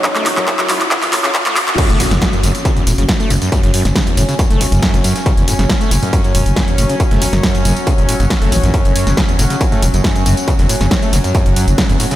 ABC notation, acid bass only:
X:1
M:4/4
L:1/16
Q:1/4=138
K:F#m
V:1 name="Acid bass" clef=bass
F,, A, F,,, F,, F,, F,, F,, z C, E,, A,, C, F,, A, F,,, F,, | F,, A, F,,, F,, F,, F,, F,, z C, E,, A,, C, F,, A, F,,, F,, | F,, F,, F,, z C, E,, A,, C, F,, A, F,,, F,, F,, F,, F,, z | C, E,, A,, C, F,, A, F,,, F,, F,, F,, F,, z C, E,, A,, C, |
F,, A, F,,, F,, F,, F,, F,, z C, E,, A,, C, F,, A, F,,, F,, | F,, F,, F,, z C, E,, A,, C, F,, A, F,,, F,, F,, F,, F,, z | C, E,, A,, C, F,, A, F,,, F,, F,, F,, F,, z C, E,, A,, C, |]